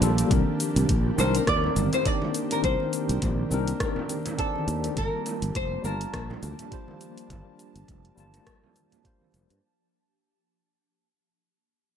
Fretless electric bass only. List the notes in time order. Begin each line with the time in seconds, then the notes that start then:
0.01 A#1
0.31 C2
0.76 C2
0.89 A#1
1.18 C2
1.47 D#2
1.76 G1
2.64 C2
3.09 C2
3.22 A#1
3.51 C2
4.68 D#2
4.97 G1
5.42 G1
5.55 F1
5.84 G1
6.13 A#1
6.43 D2
7.30 G1
7.76 G1
7.88 F1
8.17 G1
9.34 F1
9.51 G2